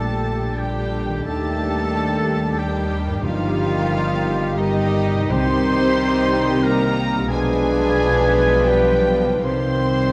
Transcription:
Already playing: A#1 A#2 D3 G3 A3 A#3 D4 G4 A4 A5
0.53 D3 G3 D4 G4 G5
0.57 G3 G4
1.08 D#3
1.13 G3
1.17 D4
1.22 D#3 G3 A3 G4 A5
1.26 D#2 G3 D4 G4 A4
2.57 D#3 G3 D4 G4 G5
3.06 G2
3.10 A#3
3.15 D#4
3.19 G1 G2 F3 G3 D#4 G4 F5
3.24 D#3 D#4 F4
4.56 D#3 G3 D#4 G4 D#5
5.13 C3
5.18 C4
5.22 D#4
5.26 D#3 C4 G4 C5 C6
5.30 C2 C3 G3 D#4 G4 C5
6.63 A#3 A#4 A#5
7.13 B2
7.18 D4
7.22 F4
7.28 B1 B2 F3 G#3 B3 D4 F4 G#4 B4 G#5
8.66 G3 G4 G5
9.25 C3
9.30 C4
9.34 D#4
9.39 G3 G4
9.43 C2 C3 D#3 C4 G4 C5 C6

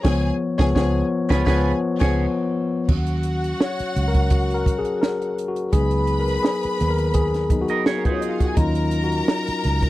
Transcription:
0.03 C#2 F3 B3 G#4 C#5 G#5, kick, snare, crash
0.58 C#2 F3 B3 G#4 C#5 G#5, kick, snare
0.75 C#2 F3 B3 G#4 C#5 G#5, kick, snare
1.29 C#2 F3 B3 F4 G#4 B4 C#5 G#5, kick, snare
1.46 C#2 F3 B3 F4 G#4 B4 C#5 G#5, kick, snare
2.00 C#2 F3 B3 G#4 C#5 G#5, kick, snare, crash
2.87 D#2 F#3 C#4 F#4 F#5, kick, crash
3.07 closed hi-hat
3.23 closed hi-hat
3.44 closed hi-hat
3.60 C#5, snare
3.79 muted fingered electric bass stroke, closed hi-hat
3.96 C#2 F#3 C#4 F#4, closed hi-hat
4.08 A#4
4.14 kick, closed hi-hat
4.30 F#4, kick, closed hi-hat
4.50 A#4, closed hi-hat
4.66 kick, closed hi-hat
4.78 G#4
4.85 closed hi-hat
5.02 A#4, snare
5.22 closed hi-hat
5.38 closed hi-hat
5.48 F#4
5.56 closed hi-hat
5.73 C#2 F#3 B3 D#4 G#4 B4 B5, kick, closed hi-hat
5.91 closed hi-hat
6.07 closed hi-hat
6.20 A#4
6.28 closed hi-hat
6.43 G#4, snare
6.63 muted fingered electric bass stroke, closed hi-hat
6.80 D#2, snare, closed hi-hat
6.90 A#4
6.98 closed hi-hat
7.14 G#4, kick, closed hi-hat
7.34 snare, closed hi-hat
7.50 F#3 B3 D#4, kick, closed hi-hat
7.61 F#4
7.68 A#4 D#5, closed hi-hat
7.86 G#4 C#5, snare
7.96 A#3 A#4
8.04 B3 D#4 G#4 B4, kick, closed hi-hat
8.09 C#4 F4 C#5
8.21 D#4 D#5, closed hi-hat
8.31 F4 F5
8.40 F#4 F#5, kick, closed hi-hat
8.49 G#4 G#5
8.56 D#2 F#3 C#4 D#4 F4 A#4 A#5, kick, closed hi-hat
8.75 closed hi-hat
8.91 closed hi-hat
9.04 F#4
9.12 closed hi-hat
9.28 snare
9.47 muted fingered electric bass stroke, closed hi-hat
9.64 C#2, snare, closed hi-hat
9.82 kick, closed hi-hat

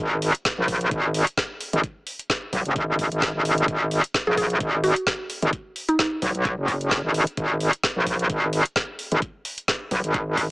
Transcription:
0.00 G#1
0.22 open hi-hat
0.35 closed hi-hat
0.45 kick, snare, closed hi-hat
0.58 A#1
0.68 kick, open hi-hat
0.81 closed hi-hat
0.91 G#1, kick, closed hi-hat
1.14 open hi-hat
1.27 closed hi-hat
1.37 kick, snare, closed hi-hat
1.61 open hi-hat
1.73 G#1, closed hi-hat
1.84 kick, closed hi-hat
2.07 open hi-hat
2.19 closed hi-hat
2.30 kick, snare, closed hi-hat
2.53 B1, kick, open hi-hat
2.65 F#1, closed hi-hat
2.76 G#1, kick, closed hi-hat
2.99 kick, open hi-hat
3.12 G#1, closed hi-hat
3.22 kick, snare, closed hi-hat
3.35 G#1
3.45 open hi-hat
3.58 closed hi-hat
3.68 G#1, kick, closed hi-hat
3.91 open hi-hat
4.04 closed hi-hat
4.14 kick, snare, closed hi-hat
4.27 A#1 G#4
4.37 G#4, kick, open hi-hat
4.50 closed hi-hat
4.60 G#1, kick, closed hi-hat
4.84 F#4, open hi-hat
4.96 closed hi-hat
5.07 kick, snare, closed hi-hat
5.30 open hi-hat
5.42 G#1, closed hi-hat
5.53 kick, closed hi-hat
5.76 open hi-hat
5.89 D#4, closed hi-hat
5.99 D#4, kick, snare, closed hi-hat
6.22 B1, kick, open hi-hat
6.35 B1, closed hi-hat
6.45 kick, closed hi-hat
6.58 F#1
6.68 kick, open hi-hat
6.81 closed hi-hat
6.91 kick, snare, closed hi-hat
7.04 G#1
7.14 open hi-hat
7.27 closed hi-hat
7.37 G#1, kick, closed hi-hat
7.60 open hi-hat
7.73 closed hi-hat
7.83 kick, snare, closed hi-hat
7.96 A#1
8.07 kick, open hi-hat
8.19 closed hi-hat
8.30 G#1, kick, closed hi-hat
8.53 open hi-hat
8.66 closed hi-hat
8.76 kick, snare, closed hi-hat
8.99 open hi-hat
9.12 G#1, closed hi-hat
9.22 kick, closed hi-hat
9.45 open hi-hat
9.58 closed hi-hat
9.68 kick, snare, closed hi-hat
9.91 B1, kick, open hi-hat
10.04 G#1, closed hi-hat
10.14 kick, closed hi-hat
10.37 kick, open hi-hat

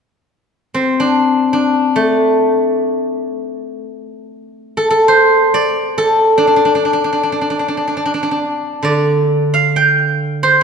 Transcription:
0.74 C4
1.00 D4
1.53 D4
1.96 A3
4.77 A4
4.90 A4
5.08 C5
5.54 D5
5.98 A4
6.38 D4
6.47 D4
6.56 D4
6.65 D4
6.75 D4
6.85 D4
6.93 D4
7.04 D4
7.13 D4
7.23 D4
7.32 D4
7.41 D4
7.50 D4
7.59 D4
7.68 D4
7.77 D4
7.88 D4
7.97 D4
8.05 D4
8.14 D4
8.23 D4
8.31 D4
8.83 D3 D5
9.54 F5
9.76 G5
10.43 C5

